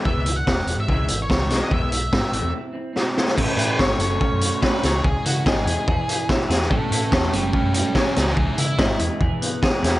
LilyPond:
<<
  \new Staff \with { instrumentName = "Lead electric guitar" } { \time 4/4 \key e \major \tempo 4 = 144 e''8. fis''4 e''16 e''8. cis''16 cis''8. dis''16 | e''2 r2 | r8 b'8 cis''2 b'8 cis''8 | gis'8 fis'8 gis'2 r4 |
<e' cis''>8 <e' cis''>8 <e' cis''>8 <d' b'>8 <d' b'>8 <d' b'>8 <b gis'>8 <b gis'>8 | <b gis'>8 e'4 r2 r8 | }
  \new Staff \with { instrumentName = "Clean electric guitar" } { \time 4/4 \key e \major b8 b8 b8 b8 e8 e8 gis8 dis'8 | b8 b8 b8 c'8 e'8 c'8 c'8 e'8 | <e b cis' a'>4. <fis a cis' a'>4. <fis a cis' a'>8 <e gis dis' gis'>8~ | <e gis dis' gis'>4 <e gis gis'>4 <e b e' gis'>4. <e b e' gis'>8 |
<e b cis' a'>4. <fis a cis' a'>4. <fis a cis' a'>8 <e gis dis' gis'>8~ | <e gis dis' gis'>4 <e gis gis'>4 <e b e' gis'>4. <e b e' gis'>8 | }
  \new Staff \with { instrumentName = "Clean electric guitar" } { \clef bass \time 4/4 \key e \major <e gis b>8 <e gis>8 <e gis>8 <e gis>8 <cis e gis>8 <cis e>8 <cis e>8 <cis e gis>8 | <e gis b>8 <e gis>8 <e gis>8 <a, e a>8 <a, e>8 <a, e>8 <a, e>8 <a, e a>8 | a8 e'8 cis''8 fis8 cis'8 fis'8 cis''8 cis8 | cis8 e'8 dis''8 e'8 e8 e'8 e''8 gis'8 |
a8 e'8 cis''8 fis8 cis'8 fis'8 cis''8 cis8 | cis8 e'8 dis''8 e'8 e8 b8 gis'8 e'8 | }
  \new Staff \with { instrumentName = "Fingered electric bass" } { \clef bass \time 4/4 \key e \major e,,16 cis,8. e,,8 e,,16 gis,16 cis,8 gis,,8 cis,8 b,,16 r16 | e,16 b,,8. gis,16 r16 a,,16 e,16 r2 | a,,16 r16 a,8 gis,,8 fis,,8 r16 fis,8 r8. cis,8 | cis,16 r16 cis8 gis,,8 e,16 r16 e,16 e8 r8. e,8 |
a,,16 r16 a,8 e,8 fis,,8 r16 fis,8 r8. cis,8 | cis,16 r16 cis8 gis,,8 e,16 r16 e,16 e8 r8. e,8 | }
  \new DrumStaff \with { instrumentName = "Drums" } \drummode { \time 4/4 bd8 hh8 <bd sn>8 hh8 bd8 hh8 <bd sn>8 <hh sn>8 | bd8 hh8 <bd sn>8 hh8 r4 sn8 sn16 sn16 | <cymc bd>8 hh8 <bd sn>8 hh8 bd8 hh8 <bd sn>8 <hh sn>8 | bd8 hh8 <bd sn>8 hh8 bd8 hh8 <bd sn>8 <hh sn>16 sn16 |
bd8 hh8 <bd sn>8 hh8 bd8 hh8 <bd sn>8 <hh sn>16 sn16 | bd8 hh8 <bd sn>8 hh8 bd8 hh8 <bd sn>8 <hh sn>8 | }
>>